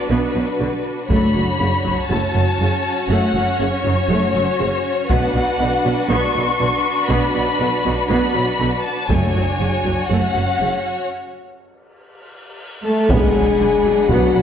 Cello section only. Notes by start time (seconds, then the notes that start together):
0.10 B2
0.35 B2
0.59 B2
1.09 F#2
1.35 F#2
1.59 F#2
1.84 F#2
2.10 F#2
2.35 F#2
2.59 F#2
3.09 F#2
3.34 F#2
3.58 F#2
3.84 F#2
4.09 F#2
4.34 F#2
4.59 F#2
5.10 B2
5.34 B2
5.59 B2
5.84 B2
6.08 B2
6.35 B2
6.59 B2
7.09 B2
7.35 B2
7.59 B2
7.85 B2
8.09 B2
8.34 B2
8.59 B2
9.10 F#2
9.36 F#2
9.60 F#2
9.85 F#2
10.10 F#2
10.35 F#2
10.60 F#2
12.85 A3
13.11 G#3
14.11 F#3